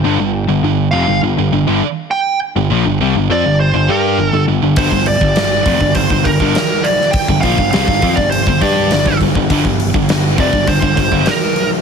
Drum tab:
HH |----------------|----------------|o-o-o-o-o-o-o-o-|o-o-o-o-o-o-o-o-|
SD |----------------|----------------|----o-------o--o|----o-------o---|
BD |----------------|----------------|oo-o--oooooo----|oooo-ooo-oo--ooo|

HH |o-o-o-o-o-o-o-o-|
SD |----o-------o---|
BD |oo-o--oooooo----|